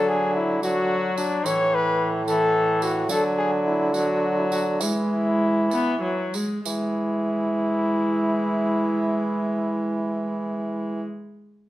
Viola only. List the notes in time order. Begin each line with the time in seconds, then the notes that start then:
Already playing: F#3
0.63 F#3
1.45 E3
2.28 E3
3.10 F#3
3.95 F#3
4.82 G#3
5.72 B3
6.02 F#3
6.35 G#3
6.66 G#3